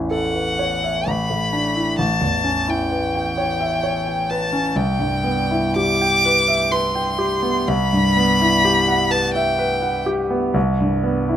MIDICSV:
0, 0, Header, 1, 3, 480
1, 0, Start_track
1, 0, Tempo, 963082
1, 535, Tempo, 917431
1, 1011, Time_signature, 3, 2, 24, 8
1, 2455, Tempo, 1008403
1, 2935, Tempo, 963082
1, 5734, End_track
2, 0, Start_track
2, 0, Title_t, "Violin"
2, 0, Program_c, 0, 40
2, 62, Note_on_c, 0, 78, 77
2, 542, Note_on_c, 0, 83, 82
2, 550, Note_off_c, 0, 78, 0
2, 1006, Note_off_c, 0, 83, 0
2, 1009, Note_on_c, 0, 81, 82
2, 1384, Note_on_c, 0, 79, 83
2, 1392, Note_off_c, 0, 81, 0
2, 2221, Note_on_c, 0, 81, 85
2, 2229, Note_off_c, 0, 79, 0
2, 2465, Note_on_c, 0, 79, 82
2, 2472, Note_off_c, 0, 81, 0
2, 2936, Note_off_c, 0, 79, 0
2, 2939, Note_on_c, 0, 86, 113
2, 3415, Note_on_c, 0, 84, 88
2, 3423, Note_off_c, 0, 86, 0
2, 3897, Note_on_c, 0, 83, 112
2, 3904, Note_off_c, 0, 84, 0
2, 4609, Note_on_c, 0, 81, 94
2, 4617, Note_off_c, 0, 83, 0
2, 4719, Note_off_c, 0, 81, 0
2, 4722, Note_on_c, 0, 79, 90
2, 5075, Note_off_c, 0, 79, 0
2, 5734, End_track
3, 0, Start_track
3, 0, Title_t, "Grand piano"
3, 0, Program_c, 1, 0
3, 0, Control_c, 1, 64, 127
3, 0, Note_on_c, 1, 33, 58
3, 0, Note_on_c, 1, 40, 44
3, 0, Note_on_c, 1, 61, 43
3, 0, Note_on_c, 1, 64, 45
3, 54, Note_on_c, 1, 69, 49
3, 123, Note_off_c, 1, 64, 0
3, 168, Note_on_c, 1, 71, 49
3, 245, Note_off_c, 1, 69, 0
3, 295, Note_on_c, 1, 73, 52
3, 367, Note_off_c, 1, 71, 0
3, 418, Note_on_c, 1, 76, 48
3, 489, Note_off_c, 1, 73, 0
3, 512, Note_off_c, 1, 33, 0
3, 533, Note_on_c, 1, 33, 59
3, 535, Note_off_c, 1, 76, 0
3, 545, Control_c, 1, 64, 0
3, 546, Note_off_c, 1, 40, 0
3, 547, Note_off_c, 1, 61, 0
3, 614, Control_c, 1, 64, 127
3, 653, Note_on_c, 1, 45, 41
3, 773, Note_on_c, 1, 62, 48
3, 842, Note_off_c, 1, 45, 0
3, 895, Note_on_c, 1, 64, 48
3, 963, Note_off_c, 1, 62, 0
3, 996, Note_off_c, 1, 33, 0
3, 1012, Note_on_c, 1, 33, 58
3, 1013, Note_off_c, 1, 64, 0
3, 1020, Control_c, 1, 64, 0
3, 1104, Control_c, 1, 64, 127
3, 1130, Note_on_c, 1, 40, 49
3, 1248, Note_on_c, 1, 61, 48
3, 1325, Note_off_c, 1, 40, 0
3, 1374, Note_on_c, 1, 64, 49
3, 1445, Note_off_c, 1, 61, 0
3, 1498, Note_on_c, 1, 71, 48
3, 1568, Note_off_c, 1, 64, 0
3, 1624, Note_on_c, 1, 79, 52
3, 1690, Note_off_c, 1, 71, 0
3, 1741, Note_on_c, 1, 73, 56
3, 1814, Note_off_c, 1, 79, 0
3, 1860, Note_on_c, 1, 76, 53
3, 1932, Note_off_c, 1, 73, 0
3, 1980, Note_on_c, 1, 73, 56
3, 2051, Note_off_c, 1, 76, 0
3, 2104, Note_on_c, 1, 79, 51
3, 2169, Note_off_c, 1, 73, 0
3, 2227, Note_on_c, 1, 71, 57
3, 2289, Note_off_c, 1, 79, 0
3, 2341, Note_on_c, 1, 61, 55
3, 2411, Note_off_c, 1, 71, 0
3, 2433, Note_off_c, 1, 33, 0
3, 2457, Note_off_c, 1, 61, 0
3, 2460, Control_c, 1, 64, 0
3, 2461, Note_on_c, 1, 36, 65
3, 2545, Control_c, 1, 64, 127
3, 2574, Note_on_c, 1, 43, 51
3, 2691, Note_on_c, 1, 59, 53
3, 2766, Note_off_c, 1, 43, 0
3, 2819, Note_on_c, 1, 64, 57
3, 2886, Note_off_c, 1, 59, 0
3, 2940, Note_on_c, 1, 67, 56
3, 3012, Note_off_c, 1, 64, 0
3, 3066, Note_on_c, 1, 79, 58
3, 3134, Note_off_c, 1, 67, 0
3, 3185, Note_on_c, 1, 71, 64
3, 3254, Note_off_c, 1, 79, 0
3, 3299, Note_on_c, 1, 76, 61
3, 3371, Note_off_c, 1, 71, 0
3, 3415, Note_on_c, 1, 71, 62
3, 3486, Note_off_c, 1, 76, 0
3, 3534, Note_on_c, 1, 79, 54
3, 3604, Note_off_c, 1, 71, 0
3, 3650, Note_on_c, 1, 67, 62
3, 3724, Note_off_c, 1, 79, 0
3, 3769, Note_on_c, 1, 59, 57
3, 3844, Note_off_c, 1, 67, 0
3, 3879, Note_off_c, 1, 36, 0
3, 3893, Note_off_c, 1, 59, 0
3, 3895, Note_on_c, 1, 36, 71
3, 3904, Control_c, 1, 64, 0
3, 4000, Control_c, 1, 64, 127
3, 4020, Note_on_c, 1, 43, 55
3, 4139, Note_on_c, 1, 59, 59
3, 4214, Note_off_c, 1, 43, 0
3, 4262, Note_on_c, 1, 64, 57
3, 4332, Note_off_c, 1, 59, 0
3, 4379, Note_on_c, 1, 67, 60
3, 4450, Note_off_c, 1, 64, 0
3, 4494, Note_on_c, 1, 78, 62
3, 4566, Note_off_c, 1, 67, 0
3, 4608, Note_on_c, 1, 71, 65
3, 4682, Note_off_c, 1, 78, 0
3, 4732, Note_on_c, 1, 76, 63
3, 4798, Note_off_c, 1, 71, 0
3, 4847, Note_on_c, 1, 71, 68
3, 4920, Note_off_c, 1, 76, 0
3, 4962, Note_on_c, 1, 78, 59
3, 5038, Note_off_c, 1, 71, 0
3, 5084, Note_on_c, 1, 67, 64
3, 5156, Note_off_c, 1, 78, 0
3, 5204, Note_on_c, 1, 59, 61
3, 5278, Note_off_c, 1, 67, 0
3, 5307, Note_off_c, 1, 36, 0
3, 5321, Note_on_c, 1, 36, 78
3, 5326, Note_off_c, 1, 59, 0
3, 5336, Control_c, 1, 64, 0
3, 5406, Control_c, 1, 64, 127
3, 5453, Note_on_c, 1, 43, 54
3, 5569, Note_on_c, 1, 59, 57
3, 5646, Note_off_c, 1, 43, 0
3, 5695, Note_on_c, 1, 64, 57
3, 5734, Note_off_c, 1, 36, 0
3, 5734, Note_off_c, 1, 59, 0
3, 5734, Note_off_c, 1, 64, 0
3, 5734, End_track
0, 0, End_of_file